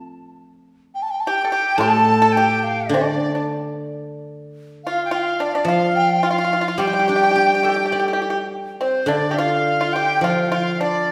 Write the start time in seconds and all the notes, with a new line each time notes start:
0.94 G5
1.02 A5
1.10 G5
1.20 A5
1.25 G4 G5
1.29 G5
1.45 A4 G5
1.51 G4 G5
1.77 A2 A4 A5 C6
1.83 A5
2.22 A4
2.32 G5
2.37 G4
2.63 F5
2.89 D3 D5
2.94 D4
3.35 D4
4.84 F4 F5
4.89 F5
5.05 G5
5.11 F4 F5 G5
5.19 F5
5.40 D4 D5
5.55 D4 D5
5.65 F3 F4 F5
5.95 G5
6.22 F4 F5 G5
6.27 F4 F5
6.38 F4
6.44 F4
6.49 F4 F5
6.61 F4
6.68 F4
6.78 G3 G4 G5
6.87 G4
6.93 G4
6.99 G4
7.08 D4 G4
7.16 G4
7.23 G4
7.31 G4
7.36 G4
7.46 G4
7.55 G4
7.63 G4 A4
7.69 G4
7.76 G4
7.86 G4
7.92 G4 D5
8.00 G4
8.08 G4
8.13 G4
8.22 G4
8.30 G4
8.79 C4 C5 D5
8.84 C5
9.06 D3 D4 D5 F5
9.12 D5
9.31 G4
9.37 F4 F5
9.81 F4
9.93 G4 G5
10.21 F3 F4 F5
10.26 F5
10.30 G5
10.40 F5
10.49 F4 G5
10.54 F5
10.74 F5
10.80 D4 D5